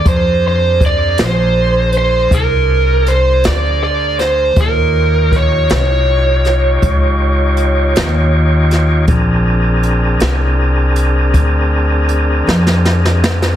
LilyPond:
<<
  \new Staff \with { instrumentName = "Lead electric guitar" } { \time 12/8 \key bes \mixolydian \tempo 4. = 53 c''8 c''8 d''8 c''4 c''8 bes'4 c''8 d''8 d''8 c''8 | bes'4 des''8 des''1 r8 | r1. | }
  \new Staff \with { instrumentName = "Tonewheel organ" } { \time 12/8 \key bes \mixolydian <d' aes' bes' c''>1. | <ees' f' g' des''>1. | <c' d' aes' bes'>1. | }
  \new Staff \with { instrumentName = "Upright bass" } { \clef bass \time 12/8 \key bes \mixolydian f,4. bes,,4. c,4. d,4. | ees,4. c,4. des,4. ees,4. | bes,,4. c,4. d,4. f,4. | }
  \new DrumStaff \with { instrumentName = "Drums" } \drummode { \time 12/8 <hh bd>4 <hh bd>8 <hh sn>4 hh8 <hh bd>4 hh8 <hh sn>4 <hh sn>8 | <hh bd>4 <hh bd>8 <hh sn>4 <hh sn>8 <hh bd>4 hh8 <hh sn>4 <hh sn>8 | <hh bd>4 hh8 <hh sn>4 hh8 <hh bd>4 hh8 sn16 sn16 sn16 sn16 sn16 sn16 | }
>>